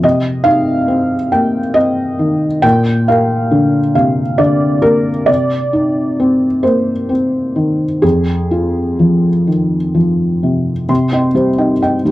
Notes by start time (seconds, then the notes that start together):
0.03 C3 D#5
0.44 D#4 F5
0.88 C4
1.32 A#3 G5
1.74 C4 D#5
2.19 D#3
2.62 A#2 G5
3.08 A#4 F5
3.51 D3
3.95 C3 F5
4.38 D3 D5
4.82 A#3 A#4
5.26 C3 D5
5.73 D#4
6.20 C4
6.63 A#3 C5
7.09 C4
7.56 D#3
8.02 F2 G#4
8.51 F4
8.99 F3
9.47 D#3
9.95 F3
10.43 C3
10.89 C3 C6
11.12 C4 D#5 G5
11.35 G3 C5
11.58 D#4 D#5 G5
11.82 D#5 G5
12.05 G3 D#4